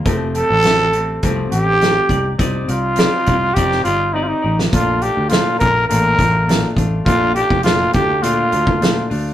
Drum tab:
HH |x-x-x-x-x-x-x-x-|x-x-x-x-x-x-----|x-x-x-x-x-x-x-x-|x-x-x-x-x-x-x-o-|
SD |----o-------o---|----o----o-----o|----o-------o---|----o-------o---|
BD |o-------o-----o-|o-----o-o-------|o-----o---o---o-|o--o--o----o----|